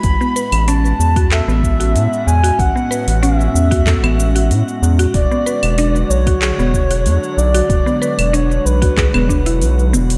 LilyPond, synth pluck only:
\new Staff \with { instrumentName = "Synth pluck" } { \time 4/4 \key a \major \tempo 4 = 94 r16 b16 b'16 r16 cis'16 r8 fis'16 a'16 b8 fis'4 fis'16~ | fis'16 b16 b'16 r16 cis'16 r8 fis'16 a'16 b8 fis'4 fis'16 | r16 b16 b'16 r16 d'16 r8 fis'16 gis'16 b8 fis'4 fis'16~ | fis'16 b16 b'16 r16 d'16 r8 fis'16 gis'16 b16 d'16 e'16 r8 b16 r16 | }